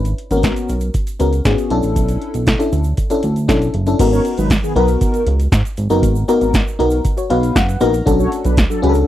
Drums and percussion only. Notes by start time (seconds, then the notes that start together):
0.05 closed hi-hat, shaker
0.18 closed hi-hat
0.31 closed hi-hat, shaker
0.43 kick, snare, closed hi-hat, shaker
0.56 closed hi-hat, shaker
0.69 closed hi-hat, shaker
0.80 closed hi-hat, shaker
0.94 kick, closed hi-hat, shaker
1.07 closed hi-hat, shaker
1.20 closed hi-hat, shaker
1.33 closed hi-hat, shaker
1.45 kick, snare, closed hi-hat, shaker
1.58 closed hi-hat, shaker
1.70 closed hi-hat
1.83 closed hi-hat, shaker
1.96 kick, closed hi-hat, shaker
2.08 closed hi-hat, shaker
2.22 closed hi-hat
2.34 closed hi-hat, shaker
2.47 kick, snare, closed hi-hat, shaker
2.60 closed hi-hat, shaker
2.73 closed hi-hat, shaker
2.84 closed hi-hat, shaker
2.97 kick, closed hi-hat, shaker
3.10 closed hi-hat, shaker
3.23 closed hi-hat, shaker
3.36 closed hi-hat, shaker
3.49 kick, snare, closed hi-hat, shaker
3.62 closed hi-hat, shaker
3.74 closed hi-hat
3.87 closed hi-hat, shaker
3.99 kick, closed hi-hat, crash, shaker
4.13 shaker
4.25 closed hi-hat, shaker
4.38 closed hi-hat, shaker
4.50 kick, snare, closed hi-hat, shaker
4.64 shaker
4.76 closed hi-hat
4.88 closed hi-hat, shaker
5.01 kick, closed hi-hat, shaker
5.14 closed hi-hat, shaker
5.27 closed hi-hat
5.40 closed hi-hat, shaker
5.52 kick, snare, closed hi-hat, shaker
5.65 closed hi-hat, shaker
5.77 closed hi-hat, shaker
5.90 closed hi-hat, shaker
6.03 kick, closed hi-hat, shaker
6.16 shaker
6.29 closed hi-hat, shaker
6.41 closed hi-hat, shaker
6.54 kick, snare, closed hi-hat, shaker
6.68 shaker
6.80 closed hi-hat
6.90 closed hi-hat, shaker
7.05 kick, closed hi-hat, shaker
7.18 closed hi-hat, shaker
7.30 closed hi-hat
7.43 closed hi-hat, shaker
7.56 kick, snare, closed hi-hat, shaker
7.69 closed hi-hat, shaker
7.81 closed hi-hat, shaker
7.94 closed hi-hat, shaker
8.07 kick, closed hi-hat, shaker
8.20 shaker
8.32 closed hi-hat, shaker
8.45 closed hi-hat, shaker
8.57 kick, snare, closed hi-hat, shaker
8.71 shaker
8.84 closed hi-hat
8.94 closed hi-hat, shaker